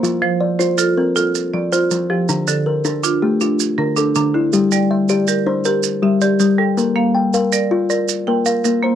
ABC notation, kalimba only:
X:1
M:12/8
L:1/8
Q:3/8=107
K:F
V:1 name="Kalimba"
[Fc]2 d c2 B A3 c2 G | D2 B A2 G F2 D A2 E | G2 e d2 c B2 G d2 A | B2 g f3 d2 B f2 c |]
V:2 name="Kalimba"
F,2 z F2 C2 z F,2 F,2 | D,2 z D2 A,2 z D,2 D,2 | G,2 z G2 D2 z G,2 G,2 | B,2 z B2 F2 z B,2 B,2 |]